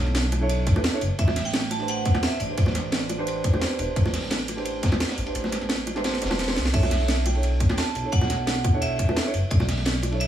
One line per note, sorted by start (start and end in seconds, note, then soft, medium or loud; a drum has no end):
0.00 0.38 D4 medium
0.00 0.39 E4 medium
0.00 0.39 A4 medium
0.00 0.40 C#5 medium
0.06 0.74 B1 medium
0.06 snare soft
0.15 snare loud
0.15 closed hi-hat medium
0.15 ride medium
0.32 closed hi-hat medium
0.32 ride medium
0.32 high bongo medium
0.40 0.73 D4 loud
0.40 0.73 E4 medium
0.40 0.74 A4 medium
0.40 0.74 C#5 loud
0.49 closed hi-hat medium
0.49 ride medium
0.67 kick loud
0.67 closed hi-hat medium
0.67 ride medium
0.75 0.91 D4 medium
0.75 0.91 E4 medium
0.75 0.91 A4 medium
0.75 0.91 B4 loud
0.75 high bongo medium
0.84 snare loud
0.84 closed hi-hat medium
0.84 ride medium
0.93 0.98 D4 loud
0.93 0.98 E4 medium
0.93 0.99 A4 medium
0.93 0.99 C#5 loud
1.01 1.10 F#1 medium
1.01 open hi-hat medium
1.01 ride medium
1.19 1.44 A1 loud
1.19 1.43 E5 loud
1.19 kick loud
1.19 closed hi-hat medium
1.19 ride medium
1.28 snare soft
1.28 high bongo loud
1.36 snare medium
1.36 closed hi-hat medium
1.36 open hi-hat medium
1.45 2.13 A1 medium
1.45 1.72 G5 loud
1.45 snare soft
1.54 snare loud
1.54 closed hi-hat medium
1.54 ride loud
1.71 1.89 A5 loud
1.71 closed hi-hat medium
1.71 ride medium
1.71 high bongo medium
1.78 2.46 D4 medium
1.78 2.47 G4 medium
1.78 2.47 B4 medium
1.78 2.48 C5 medium
1.78 ride soft
1.88 2.24 F#5 loud
1.88 closed hi-hat medium
1.88 ride medium
2.05 kick loud
2.05 closed hi-hat medium
2.05 ride medium
2.14 snare medium
2.14 high bongo medium
2.23 2.41 E5 loud
2.23 snare loud
2.23 closed hi-hat medium
2.23 ride medium
2.40 2.48 A1 loud
2.40 6.35 D5 medium
2.40 open hi-hat medium
2.40 ride medium
2.48 3.16 D4 medium
2.48 3.16 G4 medium
2.48 3.17 B4 medium
2.48 3.17 C5 medium
2.58 2.83 A1 loud
2.58 kick loud
2.58 closed hi-hat medium
2.58 ride loud
2.66 snare soft
2.66 high bongo medium
2.75 snare soft
2.75 snare medium
2.75 closed hi-hat medium
2.75 ride medium
2.84 3.52 A1 medium
2.92 snare loud
2.92 closed hi-hat medium
2.92 ride medium
3.09 closed hi-hat medium
3.09 ride medium
3.09 high bongo medium
3.18 3.51 D4 loud
3.18 3.51 G4 medium
3.18 3.51 B4 medium
3.18 3.51 C5 loud
3.27 closed hi-hat medium
3.27 ride medium
3.44 kick loud
3.44 closed hi-hat medium
3.44 ride medium
3.52 3.76 D4 medium
3.52 3.77 G4 medium
3.52 3.77 B4 medium
3.52 3.77 C5 loud
3.52 high bongo medium
3.61 snare loud
3.61 closed hi-hat medium
3.61 ride medium
3.78 3.87 E1 medium
3.78 4.54 D4 medium
3.78 4.55 G4 medium
3.78 4.55 B4 medium
3.78 4.56 C5 medium
3.78 open hi-hat medium
3.78 ride medium
3.96 4.21 A1 loud
3.96 kick loud
3.96 closed hi-hat medium
3.96 ride medium
4.05 snare soft
4.05 high bongo medium
4.14 snare medium
4.14 closed hi-hat loud
4.14 open hi-hat medium
4.22 4.90 A1 medium
4.22 snare soft
4.30 snare loud
4.30 closed hi-hat medium
4.30 ride medium
4.48 closed hi-hat loud
4.48 ride medium
4.48 high bongo medium
4.56 5.24 D4 medium
4.56 5.24 G4 medium
4.56 5.25 B4 medium
4.56 5.25 C5 medium
4.56 ride soft
4.65 closed hi-hat medium
4.65 ride medium
4.83 kick loud
4.83 snare loud
4.83 closed hi-hat loud
4.83 ride medium
4.92 snare medium
4.92 high bongo medium
5.00 snare loud
5.00 closed hi-hat medium
5.00 ride medium
5.09 snare loud
5.09 ride medium
5.18 5.26 A1 loud
5.18 open hi-hat medium
5.25 5.93 D4 medium
5.25 5.94 G4 medium
5.25 5.94 B4 medium
5.25 5.95 C5 medium
5.25 ride medium
5.35 5.60 A1 loud
5.35 closed hi-hat medium
5.35 ride medium
5.44 snare soft
5.44 high bongo medium
5.52 snare soft
5.52 snare medium
5.52 closed hi-hat loud
5.52 ride medium
5.61 6.23 A1 medium
5.61 snare soft
5.69 snare loud
5.69 closed hi-hat medium
5.69 ride medium
5.87 closed hi-hat loud
5.87 ride medium
5.87 high bongo medium
5.95 6.28 D4 medium
5.95 6.28 G4 medium
5.95 6.29 B4 medium
5.95 6.29 C5 loud
5.95 snare medium
6.04 snare medium
6.04 snare loud
6.04 closed hi-hat medium
6.04 ride medium
6.13 snare medium
6.22 6.58 E1 loud
6.22 snare loud
6.22 closed hi-hat loud
6.22 ride medium
6.26 6.45 D4 medium
6.26 snare medium
6.26 ride medium
6.30 6.46 G4 medium
6.30 6.46 B4 medium
6.30 6.46 C5 loud
6.30 snare medium
6.30 ride medium
6.30 high bongo loud
6.35 snare medium
6.35 ride medium
6.39 snare medium
6.39 closed hi-hat medium
6.39 ride medium
6.47 6.53 D4 loud
6.47 6.53 G4 medium
6.47 6.54 B4 medium
6.47 6.54 C5 loud
6.47 snare loud
6.47 snare medium
6.47 ride medium
6.56 6.72 C2 medium
6.56 snare loud
6.56 open hi-hat medium
6.65 snare medium
6.65 ride medium
6.72 6.99 B1 loud
6.72 7.25 D4 loud
6.72 7.26 E4 medium
6.72 7.26 A4 medium
6.72 7.27 C#5 loud
6.72 7.27 E5 medium
6.72 kick loud
6.72 closed hi-hat medium
6.72 crash loud
6.72 ride loud
6.83 snare soft
6.83 high bongo medium
6.91 snare medium
6.91 closed hi-hat loud
6.91 open hi-hat medium
7.00 7.68 B1 medium
7.00 snare soft
7.08 snare loud
7.08 closed hi-hat medium
7.08 ride medium
7.26 7.74 G5 loud
7.26 closed hi-hat loud
7.26 ride medium
7.26 high bongo medium
7.33 8.01 D4 medium
7.33 8.02 E4 medium
7.33 8.02 A4 medium
7.33 8.03 C#5 medium
7.33 ride soft
7.43 closed hi-hat medium
7.43 ride medium
7.60 kick loud
7.60 closed hi-hat loud
7.60 ride medium
7.69 snare medium
7.69 high bongo loud
7.78 8.10 A5 loud
7.78 snare loud
7.78 closed hi-hat medium
7.78 ride medium
7.95 8.03 B1 loud
7.95 open hi-hat medium
7.95 ride medium
8.03 8.71 D4 medium
8.03 8.71 E4 medium
8.03 8.72 A4 medium
8.03 8.72 C#5 medium
8.12 8.37 B1 loud
8.12 8.78 F#5 loud
8.12 kick loud
8.12 closed hi-hat medium
8.12 ride medium
8.21 snare soft
8.21 high bongo loud
8.30 snare soft
8.30 snare medium
8.30 closed hi-hat loud
8.30 ride medium
8.39 9.07 B1 medium
8.47 snare loud
8.47 closed hi-hat medium
8.47 ride medium
8.64 kick loud
8.64 closed hi-hat medium
8.64 ride medium
8.64 high bongo medium
8.73 9.06 D4 loud
8.73 9.06 E4 medium
8.73 9.06 A4 medium
8.73 9.06 C#5 loud
8.82 9.53 E5 loud
8.82 closed hi-hat medium
8.82 ride medium
8.99 kick medium
8.99 closed hi-hat loud
8.99 ride medium
9.07 9.23 D4 medium
9.07 9.23 E4 medium
9.07 9.23 A4 medium
9.07 9.24 B4 loud
9.07 high bongo loud
9.16 snare loud
9.16 closed hi-hat medium
9.16 ride medium
9.25 9.31 D4 medium
9.25 9.31 E4 medium
9.25 9.31 A4 medium
9.25 9.31 C#5 loud
9.34 9.42 F#1 medium
9.34 open hi-hat medium
9.34 ride medium
9.51 9.76 B1 loud
9.51 10.22 D5 loud
9.51 kick loud
9.51 closed hi-hat medium
9.51 ride medium
9.60 snare soft
9.60 high bongo medium
9.69 snare medium
9.69 closed hi-hat medium
9.69 open hi-hat medium
9.78 10.27 B1 medium
9.78 snare soft
9.85 snare loud
9.85 closed hi-hat medium
9.85 ride medium
10.02 closed hi-hat medium
10.02 ride medium
10.02 high bongo medium
10.10 10.27 D4 medium
10.10 10.27 E4 medium
10.10 10.27 A4 medium
10.10 10.27 C#5 medium
10.10 ride soft
10.20 10.27 E5 loud
10.20 closed hi-hat medium
10.20 ride medium